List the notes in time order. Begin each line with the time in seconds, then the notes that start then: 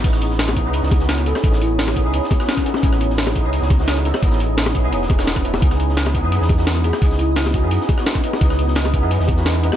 0.03 A1 B3 C#4 D#4 E4 G#4 C#5 G#5 B5 D#6, kick, closed hi-hat, crash, shaker
0.13 cross-stick, snare, shaker
0.22 closed hi-hat
0.30 snare
0.39 snare, closed hi-hat, shaker
0.48 cross-stick, snare, high bongo
0.56 B3 C#4 D#4 E4 G#4, kick, closed hi-hat, shaker
0.65 C#2 B3 C#4 D#4 E4 G#4
0.73 closed hi-hat, shaker
0.83 C#2, snare
0.91 kick, closed hi-hat, high bongo
1.00 B3 C#4 D#4 E4 F#4, snare, shaker
1.09 snare, closed hi-hat, shaker
1.18 closed hi-hat
1.26 B3 C#4 D#4 E4 A4, closed hi-hat
1.35 A4, cross-stick, snare, high bongo
1.42 A1 B3 C#4 E4 G#4 D#5, kick, closed hi-hat, shaker
1.53 snare, shaker
1.61 E4, closed hi-hat
1.79 snare, closed hi-hat, shaker
1.88 snare, high bongo
1.95 B3 C#4 D#4 E4 G#4, kick, closed hi-hat, shaker
2.04 C#2 B3 C#4 D#4 E4 G#4
2.14 closed hi-hat, shaker
2.23 snare
2.31 kick, closed hi-hat, high bongo
2.39 B3 C#4 D#4 E4 F#4, cross-stick, snare, shaker
2.49 C#4, snare, closed hi-hat, shaker
2.57 kick, cross-stick, closed hi-hat
2.65 B3 C#4 D#4 E4 A4, closed hi-hat
2.74 C#4, snare, high bongo
2.82 A1 B3 C#4 D#4 E4 G#4 D#6, kick, closed hi-hat, shaker
2.92 cross-stick, snare, shaker
3.01 closed hi-hat
3.10 snare
3.18 snare, closed hi-hat, shaker
3.27 cross-stick, snare, high bongo
3.35 B3 C#4 D#4 E4 G#4, kick, closed hi-hat, shaker
3.44 C#2 B3 C#4 D#4 E4 G#4
3.53 closed hi-hat, shaker
3.62 C#2, snare
3.70 kick, closed hi-hat, high bongo
3.79 B3 C#4 D#4 E4 F#4, snare, shaker
3.88 snare, closed hi-hat, shaker
3.97 closed hi-hat
4.05 B3 C#4 D#4 E4 A4, closed hi-hat
4.14 cross-stick, snare, high bongo
4.21 A1 B3 C#4 D#4 E4 G#4, kick, closed hi-hat, shaker
4.32 snare, shaker
4.40 closed hi-hat
4.58 snare, closed hi-hat, shaker
4.66 snare, high bongo, shaker
4.74 B3 C#4 D#4 E4 G#4, kick, closed hi-hat, shaker
4.83 C#2 B3 C#4 D#4 E4 G#4
4.92 E1, closed hi-hat, shaker
5.02 snare
5.10 E1, kick, closed hi-hat, high bongo
5.18 B3 C#4 D#4 E4 F#4, cross-stick, snare, shaker
5.27 snare, closed hi-hat, shaker
5.36 kick, cross-stick, closed hi-hat
5.44 B3 C#4 D#4 E4 A4, closed hi-hat
5.54 snare, high bongo
5.61 C#2 B3 C#4 D#4 E4 G#4 D#5, kick, closed hi-hat, shaker
5.71 cross-stick, snare, shaker
5.80 closed hi-hat
5.89 snare
5.97 snare, closed hi-hat, shaker
6.06 cross-stick, snare, high bongo
6.14 B3 C#4 D#4 E4 G#4, kick, closed hi-hat, shaker
6.23 F#2 B3 C#4 D#4 E4 G#4
6.32 closed hi-hat, shaker
6.41 E2, snare
6.49 kick, closed hi-hat, high bongo
6.58 B3 C#4 D#4 E4 F#4, snare, shaker
6.67 snare, closed hi-hat, shaker
6.76 closed hi-hat
6.84 B3 C#4 D#4 E4 G#4 B4, closed hi-hat
6.93 G#4, cross-stick, snare, high bongo
7.01 C#2 B3 C#4 E4 G#4 D#5, kick, closed hi-hat, shaker
7.11 snare, shaker
7.19 E4, closed hi-hat
7.36 snare, closed hi-hat, shaker
7.45 snare, high bongo
7.54 B3 C#4 D#4 E4 F#4 G#4, kick, closed hi-hat, shaker
7.62 F#2 B3 C#4 D#4 E4 G#4
7.71 closed hi-hat, shaker
7.80 snare
7.89 kick, closed hi-hat, high bongo
7.97 B3 C#4 D#4 E4 F#4, cross-stick, snare, shaker
8.06 snare, closed hi-hat, shaker
8.15 kick, cross-stick, closed hi-hat
8.23 B3 C#4 D#4 E4 B4, closed hi-hat
8.33 snare, high bongo
8.40 C#2 B3 C#4 D#4 E4 G#4, kick, closed hi-hat, shaker
8.50 cross-stick, snare, shaker
8.59 closed hi-hat
8.68 snare
8.75 snare, closed hi-hat, shaker
8.84 cross-stick, snare, high bongo
8.93 B3 C#4 D#4 E4 G#4, kick, closed hi-hat, shaker
9.02 F#2 B3 C#4 D#4 E4 G#4
9.11 closed hi-hat, shaker
9.20 E2, snare
9.28 kick, closed hi-hat, high bongo
9.37 B3 C#4 D#4 E4 F#4, snare, shaker
9.45 snare, closed hi-hat, shaker
9.55 closed hi-hat
9.63 B3 C#4 D#4 E4 B4, closed hi-hat
9.72 cross-stick, snare, high bongo